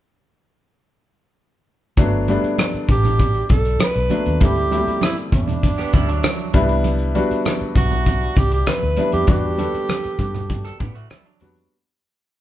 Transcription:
1.97 fingered electric bass G1, grand piano F#3 A3 B3 D4, kick, closed hi-hat, muted conga
2.28 grand piano G3 A3 B3 D4, closed hi-hat, muted conga
2.43 muted fingered electric bass stroke, closed hi-hat
2.58 cross-stick, closed hi-hat, high conga
2.73 muted fingered electric bass stroke, closed hi-hat
2.89 fingered electric bass A1, tenor saxophone G4, kick, closed hi-hat
3.03 cross-stick, closed hi-hat, low conga
3.19 kick, closed hi-hat, muted conga
3.34 closed hi-hat
3.49 fingered electric bass B1, tenor saxophone A4, kick, closed hi-hat
3.65 closed hi-hat
3.79 muted fingered electric bass stroke, cross-stick, closed hi-hat, high conga
3.84 tenor saxophone B4
3.96 fingered electric bass B1, closed hi-hat
4.10 grand piano F#3 A3 B3 D4, closed hi-hat, high conga
4.26 fingered electric bass D#2, closed hi-hat
4.40 fingered electric bass D2, grand piano G3 A3 C4 E4, kick, closed hi-hat, muted conga
4.44 tenor saxophone G4
4.56 closed hi-hat
4.71 grand piano F#3 A3 C4 E4, closed hi-hat, muted conga
4.77 grand piano G3
4.87 muted fingered electric bass stroke, closed hi-hat
5.01 tenor saxophone E4, cross-stick, closed hi-hat, high conga
5.17 closed hi-hat
5.32 fingered electric bass E2, tenor saxophone D4, kick, closed hi-hat
5.48 closed hi-hat, low conga
5.63 kick, closed hi-hat, muted conga
5.78 clean electric guitar B3 G4, cross-stick, closed hi-hat
5.93 fingered electric bass D2, clean electric guitar G3 E4, kick, closed hi-hat, low conga
6.08 clean electric guitar F#3 D4, closed hi-hat
6.23 cross-stick, closed hi-hat, high conga
6.39 closed hi-hat
6.53 fingered electric bass C2, grand piano G3 B3 D4 E4, kick, closed hi-hat, high conga
6.69 closed hi-hat
6.84 closed hi-hat, muted conga
6.99 closed hi-hat
7.15 grand piano G3 B3 D4 F#4, closed hi-hat, muted conga
7.31 muted fingered electric bass stroke, closed hi-hat
7.45 cross-stick, closed hi-hat, high conga
7.61 muted fingered electric bass stroke
7.76 fingered electric bass B1, tenor saxophone F#4, kick, closed hi-hat, muted conga
7.91 closed hi-hat, low conga
8.06 kick, closed hi-hat, muted conga
8.21 closed hi-hat
8.36 fingered electric bass C2, tenor saxophone G4, kick, closed hi-hat
8.52 tenor saxophone G4, closed hi-hat
8.66 tenor saxophone B4, cross-stick, closed hi-hat, high conga
8.83 fingered electric bass D2
8.97 grand piano G3 B3 D4 E4, closed hi-hat, high conga
9.12 fingered electric bass F2, tenor saxophone G4, closed hi-hat
9.27 fingered electric bass E2, grand piano G3 B3 D4 F#4, tenor saxophone G4, kick, closed hi-hat, muted conga
9.58 grand piano G3 B3 D4 A4, closed hi-hat, muted conga
9.74 muted fingered electric bass stroke, closed hi-hat
9.89 cross-stick, closed hi-hat, high conga
10.04 muted fingered electric bass stroke, closed hi-hat
10.19 fingered electric bass G2, kick, closed hi-hat, muted conga
10.35 cross-stick, closed hi-hat, low conga
10.50 kick, closed hi-hat, muted conga
10.65 clean electric guitar A4, cross-stick, closed hi-hat
10.80 fingered electric bass A2, clean electric guitar B3 G4, kick, closed hi-hat, low conga
10.95 clean electric guitar A3 F#4, closed hi-hat
11.10 clean electric guitar G3 E4, cross-stick, closed hi-hat, high conga
11.26 clean electric guitar F#3 D4, closed hi-hat
11.40 fingered electric bass F2, grand piano G3 B3 D4 F#4, closed hi-hat, high conga
11.56 closed hi-hat

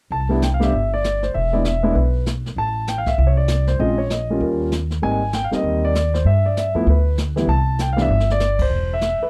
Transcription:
0.11 upright bass C2, grand piano A5, brush sweep
0.29 grand piano G3 B3 D4 E4
0.42 grand piano G5, snare, hi-hat pedal
0.54 grand piano F5
0.59 grand piano G3 B3 D4 G4 E5, snare
0.72 upright bass G1, brush sweep
0.94 grand piano D5
1.04 snare, hi-hat pedal
1.23 grand piano C5, snare
1.34 upright bass E1, grand piano E5, brush sweep
1.52 grand piano G#3 B3 D4 E4 D5
1.65 grand piano E5, snare, hi-hat pedal
1.83 grand piano G#3 B3 D4 E4
1.95 upright bass B1, grand piano B4, brush sweep
2.26 snare, hi-hat pedal
2.46 snare
2.56 upright bass A1, grand piano A5, brush sweep
2.87 grand piano G5, snare, hi-hat pedal
2.98 grand piano F5
3.06 grand piano E5, kick, snare
3.18 upright bass C2, brush sweep
3.27 grand piano C#5
3.37 grand piano D5
3.48 snare, hi-hat pedal
3.67 grand piano C5, snare
3.79 upright bass A#1, grand piano G#3 C4 C#4 F4 D#5, brush sweep
3.98 grand piano C#5
4.10 grand piano D#5, snare, hi-hat pedal
4.30 grand piano G3 A#3 C#4 F4
4.40 upright bass D#2, grand piano A#4, brush sweep
4.72 snare, hi-hat pedal
4.91 snare
5.02 upright bass G#1, grand piano G3 A#3 C4 D#4 G#5, brush sweep
5.33 grand piano G5, snare, hi-hat pedal
5.44 grand piano F5
5.51 grand piano G3 A#3 C4 D#4 D#5, muted upright bass stroke, snare
5.63 upright bass D#2, brush sweep
5.85 grand piano D5
5.95 snare, hi-hat pedal
6.14 grand piano C5, snare
6.25 upright bass G2, grand piano E5, brush sweep
6.46 grand piano D5
6.57 grand piano E5, snare, hi-hat pedal
6.75 upright bass F2, grand piano F3 A3 B3 E4
6.87 upright bass D2, grand piano B4, brush sweep
7.17 snare, hi-hat pedal
7.36 grand piano E3 G3 B3 E4, snare
7.47 upright bass C2, grand piano A5, brush sweep
7.79 grand piano G5, snare, hi-hat pedal
7.93 grand piano E3 F5
7.97 grand piano G3 B3 D4, snare
8.01 grand piano E5
8.08 upright bass G1, brush sweep
8.20 snare
8.30 grand piano D5, snare
8.40 snare, hi-hat pedal
8.59 grand piano C5, kick, ride
8.70 upright bass E1, brush sweep
8.93 grand piano E5
9.01 snare, hi-hat pedal
9.20 grand piano B4, muted upright bass stroke

